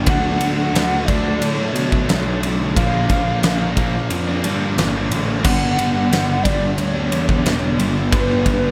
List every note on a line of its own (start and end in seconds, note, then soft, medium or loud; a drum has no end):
0.00 1.11 D4 medium
0.06 0.39 D2 loud
0.06 0.39 D3 medium
0.06 0.41 F#3 medium
0.06 0.43 A3 loud
0.06 0.43 D4 loud
0.06 1.07 F#5 loud
0.06 kick loud
0.06 ride loud
0.40 0.72 D2 medium
0.40 0.73 D3 medium
0.40 0.74 F#3 loud
0.40 0.76 A3 medium
0.40 ride medium
0.44 0.77 D4 loud
0.73 1.06 D2 loud
0.73 1.07 D3 loud
0.73 0.92 F#3 loud
0.73 0.91 A3 loud
0.73 0.89 D4 loud
0.73 snare loud
0.73 ride loud
0.90 1.08 F#3 medium
0.90 1.09 A3 medium
0.90 1.10 D4 medium
1.06 1.40 D2 medium
1.06 1.59 D3 medium
1.06 1.25 F#3 medium
1.06 1.38 D5 medium
1.06 kick medium
1.06 ride medium
1.10 1.25 A3 medium
1.10 1.24 D4 medium
1.10 muted clean electric guitar stroke soft
1.24 1.60 F#3 medium
1.24 1.59 A3 medium
1.24 muted overdriven electric guitar stroke soft
1.38 1.73 A2 loud
1.38 1.49 D5 loud
1.42 ride loud
1.49 2.41 C#5 loud
1.58 1.76 F#3 medium
1.58 1.77 A3 medium
1.58 1.79 D4 medium
1.73 2.06 B2 medium
1.73 2.08 D3 medium
1.73 2.09 F#3 medium
1.73 ride medium
1.78 2.10 A3 medium
1.78 2.12 D4 medium
1.92 2.10 F#3 medium
1.92 2.10 A3 medium
1.92 kick medium
2.07 2.40 B1 medium
2.07 2.40 D3 medium
2.07 2.27 F#3 loud
2.07 snare loud
2.07 ride loud
2.12 2.26 A3 loud
2.12 2.25 D4 loud
2.26 2.41 F#3 medium
2.26 2.43 A3 medium
2.26 2.44 D4 medium
2.41 2.74 B1 medium
2.41 2.74 D3 medium
2.41 2.60 F#3 medium
2.41 2.59 A3 medium
2.41 2.75 C#4 medium
2.41 2.58 D4 medium
2.41 ride medium
2.58 2.75 F#3 medium
2.58 2.75 A3 medium
2.58 2.77 D4 medium
2.74 3.08 A#1 loud
2.74 3.42 A#2 loud
2.74 3.09 D3 loud
2.74 3.09 F3 loud
2.74 3.11 A#3 loud
2.74 3.12 D4 loud
2.74 4.07 F5 loud
2.74 kick loud
2.74 ride loud
3.09 3.42 A#1 medium
3.09 3.41 A#2 medium
3.09 3.43 D3 medium
3.09 3.44 F3 medium
3.09 3.44 A#3 medium
3.09 3.46 D4 loud
3.09 kick medium
3.09 ride medium
3.43 3.75 A#1 medium
3.43 3.94 A#2 medium
3.43 3.76 D3 medium
3.43 3.62 F3 medium
3.43 3.61 A#3 loud
3.43 3.60 D4 loud
3.43 snare loud
3.43 ride loud
3.60 3.77 F3 medium
3.60 3.78 A#3 medium
3.60 3.80 D4 medium
3.76 4.09 A#1 loud
3.76 5.44 A#2 medium
3.76 3.94 D3 medium
3.76 3.94 F3 medium
3.76 3.93 A#3 medium
3.76 muted clean electric guitar stroke medium
3.76 kick medium
3.76 ride medium
3.80 3.94 D4 medium
3.92 4.27 F3 medium
3.92 4.26 D4 medium
3.92 muted overdriven electric guitar stroke soft
4.10 4.42 F2 medium
4.10 ride loud
4.27 4.43 F3 medium
4.27 4.44 A#3 medium
4.27 4.46 D4 medium
4.43 4.76 G2 loud
4.43 4.76 A#2 medium
4.43 4.76 D3 medium
4.43 4.77 F3 medium
4.43 4.78 A#3 medium
4.43 4.79 D4 medium
4.43 ride medium
4.62 4.77 F3 medium
4.62 4.79 D4 medium
4.77 5.09 G1 medium
4.77 5.27 A#2 loud
4.77 5.09 D3 loud
4.77 4.95 F3 loud
4.77 4.94 A#3 loud
4.77 4.94 D4 loud
4.77 snare loud
4.77 ride loud
4.94 5.11 F3 medium
4.94 5.12 A#3 medium
4.94 5.13 D4 medium
5.10 5.43 A1 medium
5.10 5.44 A#2 medium
5.10 5.42 D3 medium
5.10 5.28 F3 medium
5.10 5.44 A3 medium
5.10 5.27 A#3 medium
5.10 5.26 D4 medium
5.10 ride medium
5.26 5.43 F3 medium
5.26 5.43 A#3 medium
5.26 5.45 D4 medium
5.42 5.77 G1 loud
5.42 6.09 G2 loud
5.42 5.75 D3 medium
5.42 5.77 G3 loud
5.42 5.78 B3 medium
5.42 5.79 D4 loud
5.42 6.44 F#5 loud
5.42 kick loud
5.42 crash loud
5.76 6.10 G1 medium
5.76 6.10 D3 medium
5.76 6.11 G3 medium
5.76 6.12 B3 medium
5.76 6.13 D4 loud
5.76 ride medium
6.09 6.43 G1 loud
6.09 7.43 G2 loud
6.09 6.42 D3 medium
6.09 6.30 G3 loud
6.09 6.28 B3 medium
6.09 6.27 D4 loud
6.09 ride loud
6.13 snare loud
6.27 6.44 G3 medium
6.27 6.45 B3 medium
6.27 6.46 D4 medium
6.43 6.77 G1 medium
6.43 8.10 G2 medium
6.43 6.61 D3 medium
6.43 6.60 G3 medium
6.43 6.60 B3 medium
6.43 6.61 D4 medium
6.43 6.78 D5 loud
6.43 kick medium
6.43 ride medium
6.47 muted clean electric guitar stroke soft
6.61 6.98 B3 medium
6.61 6.98 D4 medium
6.61 muted overdriven electric guitar stroke soft
6.76 7.10 D2 medium
6.76 7.78 C#5 loud
6.76 ride loud
6.93 7.09 G3 medium
6.93 7.10 B3 medium
6.93 7.11 D4 medium
6.98 7.16 D4 medium
7.09 7.44 E2 medium
7.09 7.43 D3 medium
7.09 7.43 G3 medium
7.09 7.44 B3 medium
7.09 7.46 D4 medium
7.09 ride medium
7.14 7.46 D3 medium
7.14 7.30 B3 medium
7.14 7.31 D4 medium
7.29 7.47 B3 medium
7.29 7.48 D4 medium
7.29 kick medium
7.43 7.78 E1 medium
7.43 7.95 G2 medium
7.43 7.76 D3 medium
7.43 7.62 G3 loud
7.43 7.61 B3 loud
7.43 7.60 D4 loud
7.43 snare loud
7.43 ride loud
7.61 7.77 G3 medium
7.61 7.78 B3 medium
7.61 7.80 D4 medium
7.77 8.11 G1 medium
7.77 8.11 D3 medium
7.77 7.96 G3 medium
7.77 7.95 B3 medium
7.77 7.94 D4 medium
7.77 ride medium
7.94 8.12 G3 medium
7.94 8.13 B3 medium
7.94 8.14 D4 medium
8.11 8.45 G1 loud
8.11 8.71 G2 loud
8.11 8.43 D3 medium
8.11 8.45 G3 loud
8.11 8.46 B3 loud
8.11 8.47 D4 loud
8.11 8.71 B4 loud
8.11 kick loud
8.11 ride loud
8.45 8.71 G1 loud
8.45 8.71 D3 medium
8.45 8.71 G3 medium
8.45 8.71 B3 medium
8.45 8.71 D4 loud
8.45 kick medium
8.45 ride medium